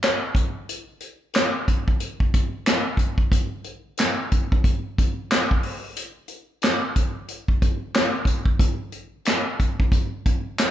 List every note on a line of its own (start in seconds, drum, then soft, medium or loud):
0.03 snare loud
0.03 clap medium
0.03 closed hi-hat medium
0.35 kick medium
0.35 closed hi-hat medium
0.69 closed hi-hat loud
1.01 closed hi-hat soft
1.34 snare loud
1.34 clap medium
1.34 closed hi-hat medium
1.68 kick medium
1.68 closed hi-hat medium
1.88 kick medium
2.00 closed hi-hat medium
2.20 kick medium
2.34 kick medium
2.34 closed hi-hat medium
2.66 snare loud
2.66 clap medium
2.66 closed hi-hat medium
2.97 kick medium
2.97 closed hi-hat medium
3.18 kick medium
3.32 kick loud
3.32 closed hi-hat medium
3.64 closed hi-hat medium
3.98 snare loud
3.98 clap medium
3.98 closed hi-hat medium
4.32 kick medium
4.32 closed hi-hat medium
4.52 kick medium
4.64 kick medium
4.64 closed hi-hat medium
4.98 kick medium
4.98 closed hi-hat medium
5.31 snare loud
5.31 clap medium
5.31 closed hi-hat medium
5.51 kick medium
5.63 open hi-hat soft
5.96 closed hi-hat medium
6.28 closed hi-hat medium
6.62 snare loud
6.62 clap medium
6.62 closed hi-hat medium
6.96 kick medium
6.96 closed hi-hat medium
7.28 closed hi-hat medium
7.48 kick medium
7.62 kick medium
7.62 closed hi-hat medium
7.94 snare loud
7.94 clap medium
7.94 closed hi-hat medium
8.25 kick medium
8.25 closed hi-hat medium
8.46 kick medium
8.59 kick loud
8.59 closed hi-hat medium
8.92 closed hi-hat medium
9.25 snare loud
9.25 clap medium
9.25 closed hi-hat medium
9.60 kick medium
9.60 closed hi-hat medium
9.80 kick medium
9.92 kick medium
9.92 closed hi-hat medium
10.26 kick medium
10.26 closed hi-hat medium
10.58 snare loud
10.58 clap medium
10.58 closed hi-hat medium